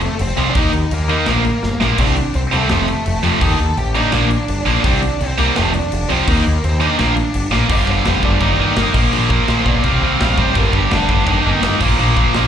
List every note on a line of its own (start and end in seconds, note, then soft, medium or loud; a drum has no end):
0.00 0.17 A3 medium
0.00 0.22 A4 medium
0.00 crash medium
0.19 0.31 F1 loud
0.19 0.46 C4 medium
0.19 0.49 C5 medium
0.19 crash medium
0.37 0.49 C2 medium
0.37 0.52 F2 medium
0.37 0.52 C3 loud
0.37 0.52 F3 medium
0.37 crash medium
0.50 0.57 D4 medium
0.50 0.57 D5 medium
0.55 0.67 D#2 medium
0.55 0.70 D#3 loud
0.55 0.70 A#3 loud
0.55 0.70 D#4 loud
0.55 0.90 D#4 medium
0.55 0.94 D#5 medium
0.55 kick loud
0.55 crash medium
0.73 0.85 D#2 medium
0.73 crash medium
0.91 1.14 D#2 medium
0.91 1.78 A#3 medium
0.91 1.78 A#4 medium
0.91 crash medium
1.09 1.23 D#3 medium
1.09 1.24 A#3 loud
1.09 1.24 D#4 loud
1.09 crash soft
1.26 1.50 A#1 loud
1.26 1.41 A#2 loud
1.26 1.42 F3 loud
1.26 1.42 A#3 loud
1.26 snare medium
1.26 crash medium
1.45 crash medium
1.63 1.75 G1 medium
1.63 snare medium
1.81 1.93 A#1 medium
1.81 1.95 A#2 medium
1.81 1.95 F3 medium
1.81 1.96 A#3 loud
1.81 snare medium
1.98 2.21 C2 loud
1.98 2.13 C3 loud
1.98 2.14 G3 loud
1.98 2.14 C4 loud
1.98 2.33 D4 medium
1.98 2.35 D5 medium
1.98 kick loud
1.98 crash medium
2.16 crash medium
2.34 2.46 C2 medium
2.34 2.41 C4 medium
2.34 2.41 C5 medium
2.34 crash medium
2.52 2.64 C2 loud
2.52 2.67 C3 loud
2.52 2.67 G3 loud
2.52 3.39 A3 medium
2.52 2.67 C4 loud
2.52 3.39 A4 medium
2.52 crash medium
2.69 2.93 F1 medium
2.69 2.85 F2 medium
2.69 2.85 C3 loud
2.69 2.85 F3 loud
2.69 snare loud
2.69 crash medium
2.88 crash medium
3.06 3.17 F1 loud
3.06 crash medium
3.23 3.38 F2 medium
3.23 3.35 F2 medium
3.23 3.38 C3 loud
3.23 3.38 F3 loud
3.23 crash medium
3.40 3.53 D#2 loud
3.40 3.55 D#3 loud
3.40 3.55 A#3 medium
3.40 3.56 D#4 loud
3.40 3.75 A4 medium
3.40 3.79 A5 medium
3.40 kick loud
3.40 crash medium
3.60 3.71 D#2 medium
3.60 crash medium
3.77 4.00 A1 loud
3.77 3.95 G4 medium
3.77 3.96 G5 loud
3.77 crash medium
3.95 4.09 D#3 medium
3.95 4.10 A#3 loud
3.95 4.81 D4 medium
3.95 4.10 D#4 loud
3.95 4.83 D5 loud
3.95 crash medium
4.12 4.36 A#1 loud
4.12 4.27 A#2 loud
4.12 4.27 F3 medium
4.12 4.28 A#3 loud
4.12 snare medium
4.12 crash medium
4.31 crash medium
4.48 4.60 G1 loud
4.48 crash medium
4.66 4.78 A#1 medium
4.66 4.81 A#2 medium
4.66 4.81 F3 medium
4.66 4.81 A#3 loud
4.66 crash medium
4.84 5.07 C2 loud
4.84 4.98 C3 loud
4.84 4.99 G3 loud
4.84 4.99 C4 medium
4.84 5.18 D4 medium
4.84 5.21 D5 loud
4.84 kick loud
4.84 crash medium
5.02 crash medium
5.21 5.32 C2 medium
5.21 5.38 C4 medium
5.21 5.39 C5 loud
5.21 crash medium
5.38 5.50 C2 medium
5.38 5.52 C3 loud
5.38 5.53 G3 loud
5.38 5.55 A#3 medium
5.38 5.53 C4 loud
5.38 5.56 A#4 medium
5.38 crash medium
5.56 5.79 F1 loud
5.56 5.70 F2 loud
5.56 5.71 C3 loud
5.56 5.71 F3 loud
5.56 5.73 A3 medium
5.56 5.74 A4 loud
5.56 snare loud
5.56 crash medium
5.74 6.07 D4 medium
5.74 6.10 D5 medium
5.74 crash medium
5.92 6.04 F1 loud
5.92 crash medium
6.09 6.22 C2 medium
6.09 6.23 F2 medium
6.09 6.24 C3 loud
6.09 6.24 F3 loud
6.09 6.27 C4 medium
6.09 6.29 C5 medium
6.09 crash medium
6.28 6.39 D#2 loud
6.28 6.42 D#3 loud
6.28 6.42 A#3 loud
6.28 6.61 A#3 medium
6.28 6.42 D#4 loud
6.28 6.64 A#4 medium
6.28 kick loud
6.28 crash loud
6.46 6.57 D#2 medium
6.46 crash medium
6.64 6.86 D#2 loud
6.64 6.80 C4 medium
6.64 6.82 C5 medium
6.64 crash medium
6.80 6.95 D#3 loud
6.80 6.95 A#3 loud
6.80 6.95 D#4 loud
6.80 7.53 D5 loud
6.80 crash medium
6.84 7.50 D4 medium
6.99 7.22 A#1 medium
6.99 7.13 A#2 medium
6.99 7.13 F3 loud
6.99 7.13 A#3 loud
6.99 snare medium
6.99 crash medium
7.17 crash medium
7.34 7.46 G1 medium
7.34 crash medium
7.52 7.64 A#1 medium
7.52 7.66 A#2 loud
7.52 7.67 F3 loud
7.52 7.67 A#3 loud
7.52 snare medium
7.69 7.83 G1 medium
7.69 7.85 G2 medium
7.69 7.86 D3 loud
7.69 7.87 G3 loud
7.69 7.88 C5 medium
7.69 7.88 F5 medium
7.69 kick loud
7.69 crash loud
7.69 crash medium
7.87 8.01 G1 medium
7.87 8.04 G2 medium
7.87 8.04 D3 loud
7.87 8.05 G3 medium
7.87 8.06 C5 medium
7.87 kick medium
7.91 8.07 F5 medium
8.05 8.19 F1 loud
8.05 8.21 G2 medium
8.05 8.22 D3 medium
8.05 8.23 G3 medium
8.05 8.23 C5 medium
8.05 8.24 F5 medium
8.05 snare loud
8.05 crash medium
8.23 8.36 G1 medium
8.23 8.40 G2 loud
8.23 8.40 D3 loud
8.23 8.41 G3 loud
8.23 8.40 A#4 medium
8.23 8.41 D5 medium
8.23 kick medium
8.40 8.54 G1 medium
8.40 8.58 D#3 loud
8.40 8.59 A#3 loud
8.40 8.59 D#4 loud
8.40 8.58 A#4 medium
8.40 8.59 D5 loud
8.40 kick loud
8.40 crash medium
8.59 8.72 G1 medium
8.59 8.75 D#3 medium
8.59 8.76 A#3 medium
8.59 8.76 D#4 medium
8.59 8.76 A#4 medium
8.59 8.77 D5 medium
8.76 8.89 G1 loud
8.76 8.93 D#3 loud
8.76 8.94 A#3 loud
8.76 8.94 D#4 loud
8.76 8.94 A#4 medium
8.76 snare loud
8.76 crash medium
8.94 9.08 A#1 medium
8.94 9.11 A#2 loud
8.94 9.11 F3 loud
8.94 9.12 A#3 loud
8.94 kick loud
8.94 crash loud
9.12 9.38 A#1 medium
9.12 9.29 A#2 loud
9.12 9.29 F3 loud
9.12 9.30 A#3 loud
9.12 crash medium
9.30 9.47 A#2 medium
9.30 9.47 F3 medium
9.30 9.48 A#3 loud
9.30 9.49 A#4 loud
9.30 kick loud
9.48 9.61 A#1 loud
9.48 9.64 A#2 medium
9.48 9.65 F3 medium
9.48 9.66 A#3 medium
9.48 9.66 C5 medium
9.48 snare loud
9.48 crash medium
9.66 9.79 B1 medium
9.66 9.82 A#2 medium
9.66 9.83 F3 loud
9.66 9.83 A#3 loud
9.66 9.84 D5 loud
9.66 kick medium
9.83 9.97 C2 medium
9.83 10.00 C3 loud
9.83 10.01 G3 loud
9.83 10.01 C4 loud
9.83 10.36 F5 loud
9.83 kick loud
9.83 crash medium
10.01 10.15 C2 medium
10.01 10.18 C3 loud
10.01 10.19 G3 medium
10.01 10.20 C4 loud
10.19 10.33 A#1 medium
10.19 10.36 C3 loud
10.19 10.37 G3 loud
10.19 10.37 C4 loud
10.19 snare loud
10.19 crash medium
10.37 10.51 A1 loud
10.37 10.54 C3 medium
10.37 10.55 G3 medium
10.37 10.55 C4 medium
10.37 10.58 C5 loud
10.37 kick medium
10.55 10.69 G1 loud
10.55 10.72 G2 loud
10.55 10.73 D3 loud
10.55 10.73 G3 loud
10.55 10.74 A#4 medium
10.55 kick loud
10.55 crash medium
10.73 10.86 G1 medium
10.73 10.89 G2 medium
10.73 10.90 D3 loud
10.73 10.91 G3 loud
10.73 10.91 G4 loud
10.73 kick loud
10.91 11.05 F1 loud
10.91 11.08 G2 medium
10.91 11.08 D3 loud
10.91 11.09 G3 loud
10.91 11.62 D4 loud
10.91 snare loud
10.91 crash medium
11.09 11.22 G1 loud
11.09 11.26 G2 loud
11.09 11.26 D3 loud
11.09 11.27 G3 loud
11.09 kick medium
11.26 11.40 G1 medium
11.26 11.42 D#3 loud
11.26 11.43 A#3 loud
11.26 11.43 D#4 loud
11.26 kick loud
11.26 crash medium
11.44 11.59 G1 medium
11.44 11.60 D#3 medium
11.44 11.61 A#3 medium
11.44 11.61 D#4 loud
11.61 11.77 G1 loud
11.61 11.79 D#3 loud
11.61 11.79 A#3 loud
11.61 11.80 D#4 loud
11.61 snare loud
11.61 crash medium
11.79 11.94 A#1 medium
11.79 11.96 A#2 medium
11.79 11.97 F3 loud
11.79 11.97 A#3 loud
11.79 kick loud
11.79 crash loud
11.97 12.25 A#1 medium
11.97 12.15 A#2 loud
11.97 12.15 F3 loud
11.97 12.16 A#3 loud
11.97 crash medium
12.16 12.33 A#2 medium
12.16 12.34 F3 loud
12.16 12.34 A#3 medium
12.16 kick medium
12.34 12.47 A#1 loud
12.34 12.47 A#2 medium
12.34 12.47 F3 medium
12.34 12.47 A#3 loud
12.34 snare loud
12.34 crash medium